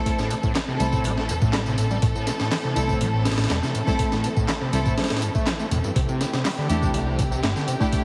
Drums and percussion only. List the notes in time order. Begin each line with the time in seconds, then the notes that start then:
0.06 kick, closed hi-hat, tambourine
0.19 snare, tambourine
0.30 closed hi-hat, tambourine
0.43 kick, tambourine
0.55 snare, clap, closed hi-hat, tambourine
0.80 closed hi-hat, tambourine
0.92 kick, tambourine
1.04 closed hi-hat, tambourine
1.18 snare
1.29 closed hi-hat, tambourine
1.42 kick, tambourine
1.53 snare, clap, closed hi-hat, tambourine
1.66 tambourine
1.78 closed hi-hat, tambourine
1.91 tambourine
2.02 kick, closed hi-hat, tambourine
2.15 tambourine
2.27 snare, closed hi-hat, tambourine
2.40 snare, tambourine
2.52 snare, clap, open hi-hat, tambourine
2.76 closed hi-hat, tambourine
2.89 kick, tambourine
3.01 closed hi-hat, tambourine
3.25 snare, open hi-hat, tambourine
3.32 snare, open hi-hat
3.38 snare, open hi-hat, tambourine
3.44 snare, open hi-hat
3.50 snare, clap, closed hi-hat, tambourine
3.63 snare, tambourine
3.75 closed hi-hat, tambourine
3.87 kick, tambourine
3.99 kick, closed hi-hat, tambourine
4.12 snare, tambourine
4.24 closed hi-hat, tambourine
4.37 kick, tambourine
4.48 snare, clap, closed hi-hat, tambourine
4.73 closed hi-hat, tambourine
4.86 kick, tambourine
4.97 snare, open hi-hat, tambourine
5.04 snare, open hi-hat
5.10 snare, open hi-hat
5.17 snare, open hi-hat
5.22 closed hi-hat, tambourine
5.35 kick, tambourine
5.47 snare, clap, closed hi-hat, tambourine
5.59 tambourine
5.71 closed hi-hat, tambourine
5.84 tambourine
5.96 kick, closed hi-hat, tambourine
6.09 tambourine
6.21 snare, closed hi-hat, tambourine
6.33 snare, tambourine
6.45 snare, clap, open hi-hat, tambourine
6.69 closed hi-hat, tambourine
6.82 kick, tambourine
6.94 closed hi-hat, tambourine
7.19 kick, closed hi-hat, tambourine
7.32 tambourine
7.43 snare, clap, closed hi-hat, tambourine
7.56 snare, tambourine
7.68 closed hi-hat, tambourine
7.81 kick, tambourine
7.93 kick, closed hi-hat, tambourine